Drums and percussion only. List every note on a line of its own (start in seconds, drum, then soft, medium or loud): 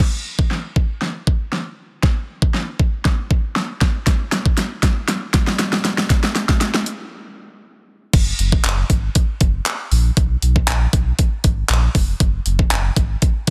0.00 kick loud
0.00 snare medium
0.00 crash medium
0.39 kick medium
0.51 snare medium
0.76 kick medium
1.02 snare medium
1.27 kick medium
1.52 snare medium
2.03 kick loud
2.03 snare medium
2.42 kick medium
2.54 snare medium
2.79 kick medium
3.05 kick medium
3.05 snare medium
3.31 kick medium
3.56 snare medium
3.81 kick medium
3.81 snare medium
4.07 kick loud
4.07 snare medium
4.07 closed hi-hat medium
4.32 snare medium
4.32 closed hi-hat medium
4.46 kick medium
4.57 snare medium
4.57 closed hi-hat loud
4.83 kick medium
4.83 snare loud
4.83 closed hi-hat medium
5.08 snare medium
5.08 closed hi-hat loud
5.34 kick loud
5.34 snare loud
5.34 closed hi-hat medium
5.47 snare loud
5.59 snare loud
5.59 closed hi-hat medium
5.73 snare loud
5.85 snare loud
5.85 closed hi-hat medium
5.98 snare loud
6.10 kick loud
6.10 snare loud
6.10 closed hi-hat medium
6.24 snare loud
6.35 snare loud
6.35 closed hi-hat medium
6.49 kick medium
6.49 snare loud
6.61 snare loud
6.61 closed hi-hat loud
6.74 snare loud
6.86 closed hi-hat medium
8.13 kick loud
8.13 closed hi-hat medium
8.13 crash loud
8.39 closed hi-hat medium
8.52 kick medium
8.64 clap loud
8.64 closed hi-hat loud
8.90 kick medium
8.90 closed hi-hat medium
9.15 kick medium
9.15 closed hi-hat loud
9.41 kick loud
9.41 closed hi-hat medium
9.66 clap loud
9.66 closed hi-hat medium
9.92 open hi-hat medium
10.17 kick loud
10.17 closed hi-hat medium
10.42 closed hi-hat medium
10.56 kick medium
10.68 clap loud
10.68 closed hi-hat loud
10.93 kick medium
10.93 closed hi-hat medium
11.19 kick medium
11.19 closed hi-hat loud
11.44 kick medium
11.44 closed hi-hat medium
11.69 clap loud
11.69 closed hi-hat medium
11.95 kick loud
11.95 open hi-hat medium
12.20 kick loud
12.20 closed hi-hat medium
12.46 closed hi-hat medium
12.59 kick medium
12.71 clap loud
12.71 closed hi-hat loud
12.96 kick loud
12.96 closed hi-hat medium
13.22 kick medium
13.22 closed hi-hat medium